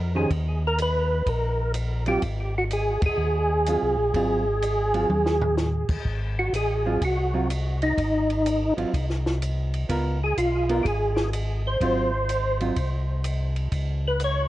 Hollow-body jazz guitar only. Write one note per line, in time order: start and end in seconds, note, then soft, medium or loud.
0.15 0.29 D#3 medium
0.15 0.29 C#4 medium
0.15 0.30 G4 medium
0.15 0.30 C5 medium
2.07 2.21 F#3 medium
2.07 2.21 C4 medium
2.07 2.22 F4 medium
3.67 3.95 F#3 soft
3.67 3.96 C4 soft
3.67 3.96 F4 medium
4.15 4.43 F#3 medium
4.15 4.43 C4 medium
4.15 4.44 F4 medium
4.94 5.08 F#3 medium
4.94 5.09 C4 medium
4.94 5.09 F4 medium
6.86 7.00 F#3 medium
6.86 7.00 C4 medium
6.86 7.01 F4 medium
7.34 7.48 F#3 medium
7.34 7.48 C4 medium
7.34 7.49 F4 medium
8.77 8.92 F#3 medium
8.77 8.92 C4 medium
8.77 8.92 F4 medium
9.89 10.17 B3 medium
9.89 10.18 F4 medium
9.89 10.18 A#4 medium
10.69 10.84 B3 medium
10.69 10.84 F4 medium
10.69 10.84 A#4 medium
11.81 12.10 F#3 medium
11.81 12.10 C4 medium
11.81 12.10 F4 medium
12.60 12.75 F#3 medium
12.60 12.75 C4 medium
12.60 12.76 F4 medium